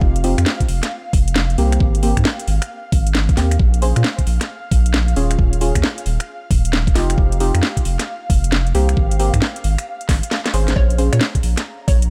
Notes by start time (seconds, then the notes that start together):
Already playing: C4 D#4 F4 G4 F5
0.01 F1, kick
0.16 closed hi-hat
0.24 C4 D#4 F4 G4, open hi-hat
0.38 F2, finger snap, closed hi-hat
0.46 snare
0.60 kick, closed hi-hat
0.68 F1, open hi-hat
0.83 finger snap, snare, closed hi-hat
1.13 F1, kick, open hi-hat
1.28 closed hi-hat
1.36 snare
1.50 closed hi-hat
1.58 C2 A#3 C4 G4, open hi-hat
1.72 finger snap, closed hi-hat
1.80 G#1, kick
1.95 closed hi-hat
2.03 A#3 C4 G4, open hi-hat
2.17 G#2, finger snap, kick, closed hi-hat
2.25 snare
2.40 closed hi-hat
2.48 G#1, open hi-hat
2.62 finger snap, closed hi-hat
2.92 G#1, kick, open hi-hat
3.07 closed hi-hat
3.15 snare
3.29 kick, closed hi-hat
3.37 D#2 A#3 C4 G4, snare, open hi-hat
3.51 finger snap, closed hi-hat
3.59 A#1 F5, kick
3.74 closed hi-hat
3.82 C#4 G#4 C5, open hi-hat
3.96 A#2, finger snap, closed hi-hat
4.04 snare
4.19 kick, closed hi-hat
4.27 A#1, open hi-hat
4.41 finger snap, snare, closed hi-hat
4.71 A#1, kick, open hi-hat
4.86 closed hi-hat
4.94 snare
5.08 closed hi-hat
5.16 D#1 C#4 F4 G#4, open hi-hat
5.31 finger snap, closed hi-hat
5.39 D#1, kick
5.53 closed hi-hat
5.61 C#4 F4 G#4, open hi-hat
5.75 D#2, finger snap, kick, closed hi-hat
5.84 snare
5.98 closed hi-hat
6.06 D#1, open hi-hat
6.20 finger snap, closed hi-hat
6.51 D#1, kick, open hi-hat
6.65 closed hi-hat
6.73 snare
6.87 kick, closed hi-hat
6.95 F1 C4 D#4 F4 G4, snare, open hi-hat
7.10 finger snap, closed hi-hat
7.18 F1, kick
7.32 closed hi-hat
7.40 C4 D#4 F4 G4, open hi-hat
7.54 F2, finger snap, closed hi-hat
7.63 snare
7.77 kick, closed hi-hat
7.85 F1, open hi-hat
7.99 finger snap, snare, closed hi-hat
8.30 F1, kick, open hi-hat
8.44 closed hi-hat
8.52 snare
8.67 closed hi-hat
8.75 C2 A#3 C4 G4, open hi-hat
8.89 finger snap, closed hi-hat
8.97 G#1, kick
9.11 closed hi-hat
9.19 A#3 C4 G4, open hi-hat
9.34 G#2, finger snap, kick, closed hi-hat
9.42 snare
9.56 closed hi-hat
9.64 G#1, open hi-hat
9.78 finger snap, closed hi-hat
10.01 closed hi-hat
10.09 G#1, kick, snare, open hi-hat
10.23 closed hi-hat
10.31 snare
10.46 snare, closed hi-hat
10.54 G#1 C#4 G#4 C5, open hi-hat
10.68 snare, closed hi-hat
10.76 A#1 C#5 A#5, kick
10.90 closed hi-hat
10.98 C#4 G#4 C5, open hi-hat
11.13 A#2 C#5, finger snap, closed hi-hat
11.21 snare
11.35 kick, closed hi-hat
11.43 A#1, open hi-hat
11.57 finger snap, snare, closed hi-hat
11.88 A#1 C#5, kick, open hi-hat
12.02 closed hi-hat